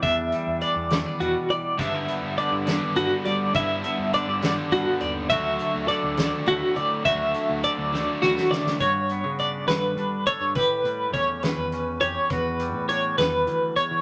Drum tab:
HH |x-x-x-x-x-x-|x-x-x-x-x-x-|x-x-x-x-x-x-|x-x-x-x-x-x-|
SD |------o-----|------o-----|------o-----|------o-----|
BD |o-----------|o-----------|o-----------|o-----------|

HH |x-x-x-------|x-x-x-x-x-x-|x-x-x-x-x-x-|x-x-x-x-x-x-|
SD |------o-oooo|------o-----|------o-----|------o-----|
BD |o-----------|o-----------|o---o-------|o-----------|